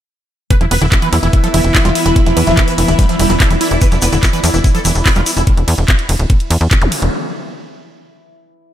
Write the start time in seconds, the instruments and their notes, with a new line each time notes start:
0.50 synth drone E3 E4, acid bass E3, analog synth pad B3, supersaw synth B4, kick, closed hi-hat
0.61 analog synth bass E1, acid bass F3, supersaw synth E4, closed hi-hat
0.71 analog synth bass E1, acid bass B3, analog synth pad E4, supersaw synth B4, open hi-hat, ride
0.81 analog synth bass E1, acid bass D3, supersaw synth E4, closed hi-hat
0.92 supersaw synth E4, kick, clap, closed hi-hat
0.96 analog synth pad E5
1.02 acid bass E3, supersaw synth B4, closed hi-hat
1.13 analog synth bass E2, acid bass F3, supersaw synth E4, open hi-hat, ride
1.23 analog synth bass E1, acid bass E3, supersaw synth E4, closed hi-hat
1.33 supersaw synth E4, kick, closed hi-hat
1.44 acid bass F3, supersaw synth A4, closed hi-hat
1.54 analog synth bass E1, acid bass E3, supersaw synth E4, analog synth pad B5, open hi-hat, ride
1.64 analog synth bass E1, closed hi-hat
1.75 acid bass E4, supersaw synth E4, kick, clap, open hi-hat
1.85 analog synth bass E1, acid bass G3, supersaw synth F4, closed hi-hat
1.95 supersaw synth E4, open hi-hat, ride
2.06 analog synth bass E1, supersaw synth E4, closed hi-hat
2.16 supersaw synth E4, kick, closed hi-hat
2.26 analog synth bass E1, acid bass F3, supersaw synth E4, closed hi-hat
2.37 analog synth bass E2, acid bass E3, supersaw synth B4, open hi-hat, ride
2.47 analog synth bass E1, acid bass F3, supersaw synth E4, closed hi-hat
2.57 acid bass E3, supersaw synth E4, kick, clap, closed hi-hat
2.68 supersaw synth B4, closed hi-hat
2.78 analog synth bass E1, acid bass E3, supersaw synth E4, open hi-hat, ride
2.88 analog synth bass D1, acid bass E3, supersaw synth E4, analog synth pad D5, closed hi-hat
2.99 acid bass G3, supersaw synth B4, kick, closed hi-hat
3.09 acid bass F3, supersaw synth E4, closed hi-hat
3.19 analog synth bass E1, acid bass G3, supersaw synth E4, open hi-hat, ride
3.30 analog synth bass E1, acid bass F3, supersaw synth E4, closed hi-hat
3.40 supersaw synth A4, kick, clap, closed hi-hat
3.50 analog synth bass E1, acid bass E3, supersaw synth E4, closed hi-hat
3.61 supersaw synth E4, acid bass E4, open hi-hat, ride
3.71 analog synth bass E1, supersaw synth E4, closed hi-hat
3.81 acid bass E3, supersaw synth B4, kick, closed hi-hat, shaker
3.91 analog synth bass E1, acid bass F3, supersaw synth E4, closed hi-hat, shaker
4.02 analog synth bass E1, acid bass B3, supersaw synth B4, open hi-hat, ride, shaker
4.12 analog synth bass E1, acid bass D3, supersaw synth E4, closed hi-hat, shaker
4.23 supersaw synth E4, kick, clap, closed hi-hat, shaker
4.33 acid bass E3, supersaw synth B4, closed hi-hat, shaker
4.44 analog synth bass E2, acid bass F3, supersaw synth E4, open hi-hat, ride, shaker
4.54 analog synth bass E1, acid bass E3, supersaw synth E4, closed hi-hat, shaker
4.64 supersaw synth E4, kick, closed hi-hat, shaker
4.75 acid bass F3, supersaw synth A4, closed hi-hat, shaker
4.85 analog synth bass E1, acid bass E3, supersaw synth E4, open hi-hat, ride, shaker
4.95 analog synth bass E1, closed hi-hat, shaker
5.06 acid bass E4, supersaw synth E4, kick, clap, open hi-hat, shaker
5.15 analog synth bass E1, acid bass G3, supersaw synth F4, closed hi-hat, shaker
5.26 supersaw synth E4, open hi-hat, ride, shaker
5.37 analog synth bass E1, supersaw synth E4, closed hi-hat, shaker
5.47 kick, closed hi-hat
5.57 analog synth bass E1, closed hi-hat
5.68 analog synth bass E2, open hi-hat, ride
5.78 analog synth bass E1, closed hi-hat
5.88 kick, clap, closed hi-hat
5.99 closed hi-hat
6.09 analog synth bass E1, open hi-hat, ride
6.19 analog synth bass D1, closed hi-hat
6.30 kick, closed hi-hat
6.40 closed hi-hat
6.50 analog synth bass E2, open hi-hat, ride
6.61 analog synth bass E2, closed hi-hat
6.71 kick, clap, closed hi-hat
6.82 analog synth bass E1, closed hi-hat, zap
6.92 open hi-hat, ride
7.02 analog synth bass E1, closed hi-hat